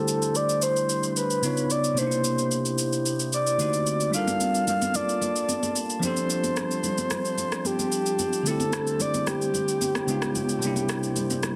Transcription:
Already playing: tine electric piano D3 A3 E4 G4 C5, glass harmonica G3 D4 E4 C5, soft synth lead A4
0.08 shaker
0.22 shaker
0.35 soft synth lead D5, shaker
0.49 shaker
0.62 soft synth lead C5, shaker
0.76 shaker
0.89 shaker
1.03 shaker
1.17 soft synth lead B4, shaker
1.30 shaker
1.42 tine electric piano C#3 B3 D#4 F4 C#5, glass harmonica B3 D#4 F4 C#5, shaker
1.57 shaker
1.70 soft synth lead D5, shaker
1.84 shaker
1.94 tine electric piano C3 A#3, glass harmonica A#3 E4 G4 C5, soft synth lead C5, shaker
1.98 tine electric piano D4 D#4 C5
2.07 tine electric piano E4
2.12 shaker
2.24 shaker
2.38 shaker
2.51 shaker
2.65 shaker
2.78 shaker
2.93 shaker
3.06 shaker
3.20 shaker
3.33 soft synth lead D5, shaker
3.47 shaker
3.58 tine electric piano D3 A3 D#4 F#4 C5, glass harmonica C4 D#4 F#4 D5, shaker
3.73 shaker
3.87 shaker
4.00 shaker
4.10 tine electric piano G3 D4 F4, glass harmonica G3 A#3 F4 A5, shaker
4.14 tine electric piano A4 A#4, soft synth lead F5
4.27 high conga, shaker
4.40 high conga, shaker
4.55 shaker
4.67 soft synth lead F5, low conga, shaker
4.82 high conga, shaker
4.95 soft synth lead D5, low conga, shaker
5.09 shaker
5.21 low conga, shaker
5.36 shaker
5.49 high conga, shaker
5.63 high conga, shaker
5.76 shaker
5.90 shaker
6.00 tine electric piano F3 C4 D4, glass harmonica D4, high conga, low conga, shaker
6.04 tine electric piano G4 A4, soft synth lead C5
6.17 shaker
6.30 soft synth lead C5, shaker
6.44 high conga, shaker
6.57 cross-stick, high conga, shaker
6.71 shaker
6.84 low conga, shaker
6.98 high conga, shaker
7.11 cross-stick, low conga, shaker
7.25 shaker
7.38 low conga, shaker
7.52 cross-stick, shaker
7.65 soft synth lead G4, high conga, shaker
7.79 high conga, shaker
7.92 shaker
8.06 shaker
8.19 high conga, low conga, shaker
8.33 shaker
8.43 tine electric piano D3 A3 C4, glass harmonica E4 C5, shaker
8.47 tine electric piano E4 G4, soft synth lead A4
8.60 high conga, shaker
8.73 cross-stick, high conga, shaker
8.87 shaker
9.00 soft synth lead D5, low conga, shaker
9.14 high conga, shaker
9.27 soft synth lead G4, cross-stick, low conga, shaker
9.42 shaker
9.54 low conga, shaker
9.68 shaker
9.81 high conga, shaker
9.95 cross-stick, high conga, shaker
10.07 tine electric piano C#3 G#3 B3 D#4 F4, glass harmonica B3 D#4 F4 C#5, shaker
10.22 cross-stick, shaker
10.35 high conga, low conga, shaker
10.49 shaker
10.59 tine electric piano C3 G3 A#3, glass harmonica A#3 E4 G4 C5, shaker
10.65 tine electric piano D4 E4
10.76 high conga, shaker
10.89 cross-stick, high conga, shaker
11.03 shaker
11.16 low conga, shaker
11.30 high conga, shaker
11.43 cross-stick, low conga, shaker

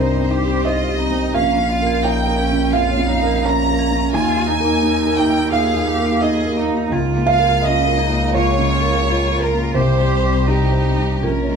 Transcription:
Already playing: double bass C2, felt piano C2 G2 C4 G4 A#4 C5, cello D#4, violin section C5
0.13 marimba D#4
0.20 felt piano C4
0.31 marimba D#4, cello G4
0.42 felt piano G4
0.48 marimba C4
0.65 marimba D#4, cello F4, felt piano C5 D#5, violin section D#5
0.82 marimba C5
0.88 felt piano G4
0.99 marimba C4, cello D#4
1.10 felt piano C4
1.33 double bass A#1, felt piano A#1 F5, cello C#4, marimba A#4, violin section F5
1.52 marimba A#5
1.57 felt piano C#4
1.69 cello F4, marimba F5
1.82 felt piano A#4
1.87 marimba A#4
2.03 cello D#4, felt piano C#5 G5, marimba F5, violin section G5
2.27 felt piano A#4
2.37 cello C#4, marimba A#4
2.51 felt piano C#4, marimba F5
2.73 felt piano F2 F5, cello F4, marimba A#4, violin section F5
2.91 marimba C#5
2.97 felt piano C#4
3.08 cello D#4, marimba C#5
3.22 felt piano A#4
3.27 marimba A#4
3.44 cello C#4, marimba C#5, felt piano C#5 A#5, violin section A#5
3.63 marimba A#5
3.69 felt piano A#4
3.79 marimba A#4
3.92 felt piano C#4
4.12 double bass D#2, felt piano D#2 G#5, marimba D#4, cello F4, violin section G#5
4.30 marimba D#5
4.37 felt piano A#3
4.47 cello D#4, marimba A#4
4.60 felt piano A#4
4.65 marimba D#4
4.82 felt piano D#4, marimba A#4
5.06 felt piano A#4
5.17 marimba D#4, violin section G5, felt piano G5
5.29 felt piano A#3
5.34 marimba A#4
5.50 felt piano A#2 F5, marimba D#4, cello G#4, violin section F5
5.70 marimba G#4
5.76 felt piano A#3
5.88 cello G4, marimba G#4
5.99 felt piano A#4
6.06 marimba D#4
6.21 felt piano D#4 D#5, cello G#4, marimba G#4, violin section D#5
6.40 marimba D#5
6.45 felt piano A#4
6.57 marimba D#4, cello D#4
6.68 felt piano A#3
6.92 double bass C#2, felt piano C#2, cello F4, marimba A#4
7.10 marimba A#5
7.16 felt piano A#3
7.26 felt piano F5, violin section F5
7.39 felt piano A#4
7.45 marimba A#4
7.62 cello C#4, felt piano F4 D#5, violin section D#5, marimba F5
7.86 felt piano A#4
7.97 cello D#4, marimba A#4
8.10 felt piano A#3
8.16 marimba F5
8.34 felt piano C#2 C#5, cello F4, marimba A#4, violin section C#5
8.52 marimba C#5
8.58 felt piano C#3
8.81 felt piano A#4
8.87 marimba A#4
9.04 cello F4, felt piano F4, marimba C#5
9.22 marimba A#5
9.28 felt piano A#4
9.39 felt piano A#4, marimba A#4, violin section A#4
9.52 felt piano A#3
9.74 double bass C2, felt piano C2 C5, marimba C4, cello G4, violin section C5
9.93 marimba C5
10.00 felt piano G3
10.12 marimba G4
10.23 felt piano C5
10.30 marimba C4
10.46 cello D#4, felt piano G4, marimba G4, violin section G4
10.72 felt piano C5
10.85 marimba C4
10.97 felt piano G3
11.04 marimba G4
11.22 double bass A#1, felt piano A#1 A#4, cello C#4, marimba A#4, violin section A#4
11.42 marimba C#5
11.49 felt piano G#3

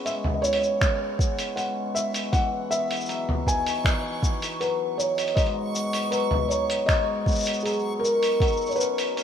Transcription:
Already playing: hammered dulcimer C#3 B3 C#4 E4, synth texture C#6
0.05 hammered dulcimer G#3, felt piano E5, open hi-hat, shaker
0.24 mid tom
0.34 felt piano D#5
0.42 hammered dulcimer E4, felt piano C#5, shaker
0.53 open hi-hat
0.63 shaker
0.80 hammered dulcimer C#3, finger snap, kick, open hi-hat, shaker
1.18 hammered dulcimer B3, kick, shaker
1.39 open hi-hat, shaker
1.56 hammered dulcimer G#3, felt piano F#5, open hi-hat, shaker
1.94 hammered dulcimer E4, felt piano E5, shaker
2.14 open hi-hat, shaker
2.32 hammered dulcimer E3, felt piano F#5, kick, open hi-hat, shaker
2.70 hammered dulcimer B3, felt piano E5, shaker
2.91 open hi-hat, shaker
2.96 shaker
3.00 shaker
3.05 hammered dulcimer F#3, open hi-hat, shaker
3.10 shaker
3.29 mid tom
3.46 hammered dulcimer D#4, felt piano G#5, kick, shaker
3.66 open hi-hat, shaker
3.84 hammered dulcimer E3, finger snap, kick, open hi-hat, shaker
4.22 hammered dulcimer B3, kick, shaker
4.42 open hi-hat, shaker
4.60 hammered dulcimer F#3, felt piano B4, open hi-hat, shaker
4.98 hammered dulcimer D#4, felt piano C#5, shaker
5.18 open hi-hat, shaker
5.28 open hi-hat
5.35 hammered dulcimer G#2, felt piano D#5, kick, open hi-hat, shaker
5.47 open hi-hat
5.74 hammered dulcimer B3, shaker
5.93 open hi-hat, shaker
6.11 hammered dulcimer F#3, felt piano B4, open hi-hat, shaker
6.31 mid tom
6.48 hammered dulcimer D#4, felt piano C#5, shaker
6.70 open hi-hat, shaker
6.86 hammered dulcimer G#2, felt piano D#5, finger snap, kick, open hi-hat, shaker
7.26 hammered dulcimer B3, kick, shaker
7.30 shaker
7.32 shaker
7.35 shaker
7.38 shaker
7.40 shaker
7.43 shaker
7.45 open hi-hat, shaker
7.48 shaker
7.53 shaker
7.60 felt piano G#4, shaker
7.65 hammered dulcimer F#3, open hi-hat, shaker
7.73 shaker
7.79 shaker
7.99 hammered dulcimer D#4, felt piano A#4
8.04 shaker
8.23 open hi-hat, shaker
8.40 hammered dulcimer F#3, kick, open hi-hat, shaker
8.47 shaker
8.52 shaker
8.57 shaker
8.61 shaker
8.66 felt piano C#5, shaker
8.71 shaker
8.76 hammered dulcimer C#4, felt piano B4, shaker
8.80 shaker
8.98 open hi-hat, shaker
9.16 hammered dulcimer C#4, open hi-hat, shaker

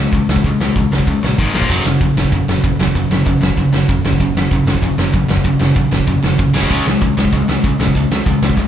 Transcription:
0.00 distorted electric guitar C#3 G#3
0.12 picked electric bass C#2, distorted electric guitar C#3 G#3, kick, open hi-hat
0.29 picked electric bass C#2, distorted electric guitar C#3 G#3, snare
0.36 kick
0.44 picked electric bass C#2, distorted electric guitar C#3 G#3, kick, open hi-hat
0.60 picked electric bass C#2, distorted electric guitar C#3 G#3, snare
0.76 picked electric bass C#2, distorted electric guitar C#3 G#3, kick, open hi-hat
0.91 picked electric bass C#2, distorted electric guitar C#3 G#3, snare
0.99 kick
1.07 picked electric bass C#2, distorted electric guitar C#3 G#3, kick, open hi-hat
1.23 picked electric bass A#1, distorted electric guitar C#3 G#3, snare
1.38 picked electric bass G#1, distorted electric guitar G#2 D#3 G#3, kick, open hi-hat
1.53 picked electric bass A#1, distorted electric guitar A#2 F3 A#3, snare
1.62 kick
1.69 picked electric bass F#1, distorted electric guitar F#2 C#3 F#3, kick, open hi-hat
1.85 picked electric bass F#1, distorted electric guitar F#2 C#3, snare
2.00 picked electric bass F#1, distorted electric guitar F#2 C#3, kick, open hi-hat
2.16 picked electric bass F#1, distorted electric guitar F#2 C#3, snare
2.24 kick
2.32 picked electric bass F#1, distorted electric guitar F#2 C#3, kick, open hi-hat
2.48 picked electric bass F#1, distorted electric guitar F#2 C#3, snare
2.64 picked electric bass F#1, distorted electric guitar F#2 C#3, kick, open hi-hat
2.79 picked electric bass F#1, distorted electric guitar F#2 C#3, snare
2.87 kick
2.95 picked electric bass F#1, distorted electric guitar F#2 C#3, kick, open hi-hat
3.10 picked electric bass F#1, distorted electric guitar F#2 C#3, snare
3.26 picked electric bass F#1, distorted electric guitar F#2 C#3, kick, open hi-hat
3.41 picked electric bass F#1, distorted electric guitar F#2 C#3, snare
3.50 kick
3.57 picked electric bass F#1, distorted electric guitar F#2 C#3, kick, open hi-hat
3.73 picked electric bass F#1, distorted electric guitar F#2 C#3, snare
3.89 picked electric bass F#1, distorted electric guitar F#2 C#3, kick, open hi-hat
4.04 picked electric bass F#1, distorted electric guitar F#2 C#3, snare
4.13 kick
4.20 picked electric bass F#1, distorted electric guitar F#2 C#3, kick, open hi-hat
4.35 picked electric bass F#1, distorted electric guitar F#2 C#3, snare
4.51 picked electric bass F#1, distorted electric guitar F#2 C#3, kick, open hi-hat
4.66 picked electric bass F#1, distorted electric guitar F#2 C#3, snare
4.75 kick
4.82 picked electric bass F#1, distorted electric guitar F#2 C#3, kick, open hi-hat
4.98 picked electric bass F#1, distorted electric guitar F#2 C#3, snare
5.13 picked electric bass F#1, distorted electric guitar F#2 C#3, kick, open hi-hat
5.28 picked electric bass F#1, distorted electric guitar F#2 C#3, snare
5.37 kick
5.44 picked electric bass F#1, distorted electric guitar F#2 C#3, kick, open hi-hat
5.60 picked electric bass F#1, distorted electric guitar F#2 C#3, snare
5.76 picked electric bass F#1, distorted electric guitar F#2 C#3, kick, open hi-hat
5.92 picked electric bass F#1, distorted electric guitar F#2 C#3, snare
6.00 kick
6.07 picked electric bass F#1, distorted electric guitar F#2 C#3, kick, open hi-hat
6.23 picked electric bass F#1, distorted electric guitar F#2 C#3, snare
6.39 picked electric bass F#1, distorted electric guitar F#2 C#3, kick, open hi-hat
6.54 picked electric bass C#2, distorted electric guitar C#3 G#3 C#4, snare
6.63 kick
6.69 picked electric bass C#2, distorted electric guitar C#3 G#3 C#4, kick, open hi-hat
6.86 picked electric bass C#2, distorted electric guitar C#3 G#3, snare
7.01 picked electric bass C#2, distorted electric guitar C#3 G#3, kick, open hi-hat
7.17 picked electric bass C#2, distorted electric guitar C#3 G#3, snare
7.25 kick
7.32 picked electric bass C#2, distorted electric guitar C#3 G#3, kick, open hi-hat
7.48 picked electric bass C#2, distorted electric guitar C#3 G#3, snare
7.64 picked electric bass C#2, distorted electric guitar C#3 G#3, kick, open hi-hat
7.79 picked electric bass C#2, distorted electric guitar C#3 G#3, snare
7.88 kick
7.95 picked electric bass C#2, distorted electric guitar C#3 G#3, kick, open hi-hat
8.11 picked electric bass C#2, distorted electric guitar C#3 G#3, snare
8.26 picked electric bass C#2, distorted electric guitar C#3 G#3, kick, open hi-hat
8.42 picked electric bass C#2, distorted electric guitar C#3 G#3, snare
8.49 kick
8.57 picked electric bass C#2, distorted electric guitar C#3 G#3, kick, open hi-hat

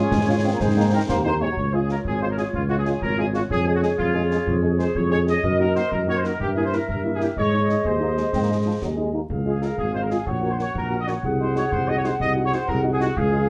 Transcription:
Already playing: trombone section F3 C#4, woodwind section F4 C#5, trumpet section G#4
0.11 tuba G#2, euphonium G#3, concert bass drum, snare
0.28 french horn section G#3 C#4 F4, euphonium C#4
0.43 french horn section G#3 C#4 F4, euphonium C4
0.53 euphonium A#3
0.60 tuba G#2, trombone section D#3 C4, euphonium G#3, woodwind section D#4 C5, concert bass drum, snare
0.76 french horn section G#3 C4 D#4, euphonium A#3
0.92 french horn section G#3 C4 D#4, euphonium C4, trumpet section A#4
1.08 tuba D#2, euphonium A#3, trumpet section C5, concert bass drum, snare
1.25 french horn section G#3 C4 D#4, euphonium A#3, trumpet section C5
1.40 french horn section G#3 C4 D#4, euphonium G#3, trumpet section C#5
1.49 euphonium F#3
1.57 tuba C#2, woodwind section F4 C#5, concert bass drum
1.73 french horn section G#3 C#4 F4, trumpet section G#4
1.89 french horn section G#3 C#4 F4, trumpet section A#4, snare
2.05 tuba G#1, trumpet section G#4, concert bass drum
2.21 french horn section G#3 C#4 F4, trumpet section C5
2.30 trumpet section A#4
2.37 french horn section G#3 C#4 F4, trumpet section G#4, snare
2.53 tuba C#2, trumpet section F4, concert bass drum
2.69 french horn section G#3 C#4 F4, trumpet section F#4
2.78 trumpet section G#4
2.85 french horn section G#3 C#4 F4, trumpet section G#4, snare
3.01 tuba G#1, trumpet section A#4, concert bass drum
3.18 french horn section G#3 C#4 F4, trumpet section G#4
3.33 french horn section G#3 C#4 F4, trumpet section F#4, snare
3.50 tuba F2, trumpet section G#4, woodwind section G#4 C#5, concert bass drum
3.66 french horn section G#3 C#4 G#4, trumpet section G#4
3.74 trumpet section F#4
3.82 french horn section G#3 C#4 G#4, trumpet section G#4, snare
3.98 tuba F2, trumpet section F4, concert bass drum
4.14 french horn section G#3 C#4 G#4
4.31 french horn section G#3 C#4 G#4, snare
4.46 tuba F2, concert bass drum
4.63 french horn section G#3 C#4 G#4
4.78 french horn section G#3 C#4 G#4, trumpet section C5, snare
4.95 tuba F2, trumpet section C#5, concert bass drum
5.11 french horn section G#3 C#4 G#4, trumpet section C#5
5.27 french horn section G#3 C#4 G#4, trumpet section D#5, snare
5.43 tuba F#2, woodwind section A#4 D#5, concert bass drum
5.59 french horn section A#3 D#4 F#4, trumpet section A#4
5.75 french horn section A#3 D#4 F#4, trumpet section C5, snare
5.91 tuba F#2, trumpet section A#4, concert bass drum
6.07 french horn section A#3 D#4 F#4, trumpet section C#5
6.17 trumpet section C5
6.24 french horn section A#3 D#4 F#4, trumpet section A#4, snare
6.40 tuba G2, trumpet section G4, woodwind section E5, concert bass drum
6.56 french horn section A#3 C#4 E4, trumpet section G#4
6.65 trumpet section C5
6.72 french horn section A#3 C#4 E4, trumpet section A#4, snare
6.89 tuba G2, trumpet section A#4, concert bass drum
7.04 french horn section A#3 C#4 E4
7.13 trumpet section G#4
7.20 french horn section A#3 C#4 E4, trumpet section G4, snare
7.37 tuba G#2, woodwind section G#4 D#5, trumpet section C#5, concert bass drum
7.52 french horn section G#3 D#4
7.68 french horn section G#3 D#4, snare
7.85 tuba D#2, euphonium G#3, trumpet section C5, concert bass drum
8.00 french horn section G#3 D#4, euphonium A#3
8.16 french horn section G#3 D#4, euphonium G#3, snare
8.33 tuba G#2, euphonium C4, concert bass drum, snare
8.42 euphonium A#3
8.49 french horn section G#3 D#4, euphonium G#3
8.65 euphonium F3, french horn section G#3 D#4
8.82 tuba D#2, euphonium F#3, concert bass drum, snare
8.90 euphonium G#3
8.97 french horn section G#3 D#4, euphonium G#3
9.13 french horn section G#3 D#4, euphonium A#3
9.30 tuba C#2, woodwind section G#4 F5, concert bass drum
9.45 french horn section G#3 C#4 F4, trumpet section G#4
9.61 french horn section G#3 C#4 F4, trumpet section A#4, snare
9.78 tuba G#1, trumpet section G#4, concert bass drum
9.94 french horn section G#3 C#4 F4, trumpet section C5
10.02 trumpet section A#4
10.10 french horn section G#3 C#4 F4, trumpet section G#4, snare
10.26 tuba A#1, woodwind section F#4 F#5, trumpet section C#5, concert bass drum
10.43 french horn section A#3 C#4 F#4
10.51 trumpet section C5
10.59 french horn section A#3 C#4 F#4, trumpet section C#5, snare
10.75 tuba A#1, trumpet section A#4, concert bass drum
10.90 french horn section A#3 C#4 F#4
11.00 trumpet section D#5
11.07 french horn section A#3 C#4 F#4, trumpet section C#5, snare
11.23 tuba C2, woodwind section G#4 F#5, concert bass drum
11.39 french horn section G#3 D#4 F#4, trumpet section C5
11.56 french horn section G#3 D#4 F#4, trumpet section C#5, snare
11.72 tuba C2, trumpet section C5, concert bass drum
11.88 french horn section G#3 D#4 F#4, trumpet section D#5
11.97 trumpet section C#5
12.04 french horn section G#3 D#4 F#4, trumpet section C5, snare
12.20 tuba C2, trumpet section D#5, concert bass drum
12.36 french horn section G#3 D#4 F#4
12.45 trumpet section C#5
12.52 french horn section G#3 D#4 F#4, trumpet section C5, snare
12.68 tuba C2, trumpet section A#4, concert bass drum
12.84 french horn section G#3 D#4 F#4
12.92 trumpet section G#4
13.00 french horn section G#3 D#4 F#4, trumpet section F#4, snare
13.16 tuba C#2, trumpet section G#4, woodwind section G#4 F5, concert bass drum
13.33 french horn section G#3 C#4 F4

